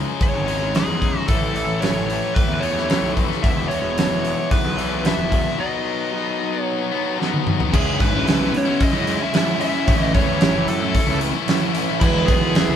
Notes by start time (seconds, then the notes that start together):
Already playing: C#3 G#3 C#4
0.06 E3 G#3 D#4
0.21 C#5, kick, open hi-hat
0.33 G#1 E3 G#3 D#4
0.46 C#3 E3 G#3 C#4 D#4, open hi-hat
0.59 E3 G#3 D#4
0.73 C#3 E3 G#3 C#4 D#4 G#4, snare, open hi-hat
0.87 E2
1.01 C#3 E3 G#3 D#4, kick, open hi-hat
1.15 E3 G#3 D#4
1.27 A1 A2 E3 A3 C#4 E4 A4, kick, open hi-hat
1.54 A1 E3 A3 C#4 E4, open hi-hat
1.67 A1
1.80 A2 E3 A3 C#5, snare, open hi-hat
1.84 C#4 E4
1.94 A1
2.08 E3 A3 C#4 E4, open hi-hat
2.22 A3 C#4 E4
2.34 B4, kick, open hi-hat
2.48 E2 A3 C#4 E4
2.54 B4
2.60 E3 A3 C#5, open hi-hat
2.64 A2 C#4 E4
2.76 A3 C#4 E4, snare
2.88 A2 E3 A3 C#4 E4, snare, open hi-hat
3.02 B1
3.15 E3 A3 C#4 E4, kick, open hi-hat
3.29 A3 C#4 E4, snare
3.42 E1 E2 B2 E3 G#3 B3 E4 E5, kick, open hi-hat
3.68 E1 E3 G#3 B3 E4 C#5, open hi-hat
3.83 E1
3.96 E3 G#3 B3 E4, snare, open hi-hat
4.10 E1
4.24 E3 G#3 B3 E4, open hi-hat
4.37 G#3 B3 E4
4.51 B4, kick, open hi-hat
4.64 B1 G#3 B3 E4
4.77 E2 B2 E3 G#3 B3 E4, open hi-hat
4.91 G#3 B3 E4
5.03 E2 B2 E3 G#3 B3 E4 E5, snare, open hi-hat
5.17 E1
5.30 E3 G#3 B3 E4, kick, open hi-hat
5.43 G#3 B3 E4
5.56 B2 D#3 F#3 B3 D#4 D#5
5.84 D#3 F#3 B3 D#4
6.11 B2 D#3 F#3 B3 D#4
6.38 D#3 F#3 B3 D#4
6.52 F#3 B3 D#4
6.63 C#5
6.78 F#3 B3 D#4
6.91 B2 D#3 F#3 B3 D#4
7.04 F#3 B3 D#4
7.18 B2 D#3 F#3 B3 D#4, snare
7.22 B3
7.34 high tom
7.45 D#3 F#3 B3 D#4, mid tom
7.59 F#3 B3 D#4, floor tom
7.72 C#2 C#3 G#3 C#4 E4 G#4, kick, crash
7.99 G#1 C#3 G#3 C#4 E4 B4, kick, open hi-hat
8.12 G#3 C#4 E4
8.25 C#2 C#3 G#3 C#4 E4, snare, open hi-hat
8.39 B1 G#3 C#4 E4
8.52 B2 C#3 G#3 C#4 E4, muted distorted electric guitar stroke, open hi-hat
8.57 C#5
8.65 G#3 C#4 E4, muted overdriven electric guitar stroke
8.81 D#5, kick, open hi-hat
8.92 F#2 G#3 C#4 E4
9.05 C#3 G#3 C#4 E4, open hi-hat
9.19 G#3 C#4 E4 E5, muted overdriven electric guitar stroke
9.33 C#3 G#3 C#4 E4, snare, open hi-hat
9.46 G#3 C#4 E4
9.58 C#3 G#3 C#4 E4 E5, open hi-hat
9.72 G#3 C#4 E4
9.85 A1 A2 E3 A3 C#4 E4, kick, open hi-hat
10.01 D#5
10.12 E2 E3 A3 C#4 E4 C#5, kick, open hi-hat
10.27 A3 C#4 E4
10.39 A1 A2 E3 A3 C#4 E4, snare, open hi-hat
10.53 F#1 A3 C#4 E4
10.67 F#2 E3 A3 C#4 E4 A4, muted distorted electric guitar stroke, open hi-hat
10.80 A3 C#4 E4, muted overdriven electric guitar stroke
10.95 kick, open hi-hat
11.07 C#2 A3 C#4 E4
11.20 E3 A3 C#4 E4, open hi-hat
11.34 A3 C#4 E4, muted overdriven electric guitar stroke
11.48 A2 E3 A3 C#4 E4, snare, open hi-hat
11.61 A3 C#4 E4
11.74 E3 A3 C#4 E4, open hi-hat
11.87 A3 C#4 E4
12.00 E1 E3 G#3 B3 E4, kick, crash
12.04 E4
12.26 B1 E3 G#3 G#4, kick, open hi-hat
12.30 B3 E4
12.41 G#3 B3 E4
12.54 E1 E3 G#3 B3 E4, snare, open hi-hat
12.67 C#2 G#3 B3 E4